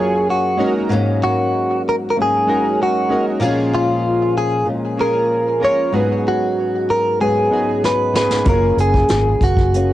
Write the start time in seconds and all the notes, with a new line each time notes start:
Already playing: F#2 F#3 A#3 C#4 F4 G#4 A#4 C#5 F5
0.30 F#4
0.57 F#3 G#3 A#3 C#4 D#4 F#4 A#4
0.89 G#2 F#3 A#3
0.93 C#4
1.23 F#4
1.89 A#4
2.10 A#4
2.16 G#2 F#3 A#3 C#4
2.22 G#4
2.47 G#3 C#4 D#4 F#4 A#4
2.83 F#4
3.09 F#3 G#3 A#3 C#4 D#4 F#4 A#4
3.40 A#2 F3 G#3 A#3 C#4 F4 G#4
3.44 C#4
3.75 F4
4.38 G#4
4.65 A#2 F3 G#3 C#4
4.97 A#3 C#4 F4 G#4 A#4
5.60 F3 G#3 A#3 C#4 F4 A#4
5.65 C#5
5.92 G#2 F#3 B3 C#4 D#4 F#4 G#4
6.28 F#4
6.90 A#4
7.20 G#2 F#3 B3 C#4 G#4
7.50 G#2 B3 D#4 F#4 G#4
7.84 B4, snare
8.13 G#2 F#3 B3 C#4 D#4 F#4 G#4 B4, snare
8.31 snare
8.44 F#1 F#2 A#3 C#4 F4 F#4, kick, closed hi-hat
8.49 C#4 A#4
8.53 G#4
8.77 F#1 G#4, closed hi-hat
8.94 kick
9.09 G#1, snare, closed hi-hat
9.41 F#1 F#4, kick, closed hi-hat
9.57 kick
9.74 A#3 C#4, closed hi-hat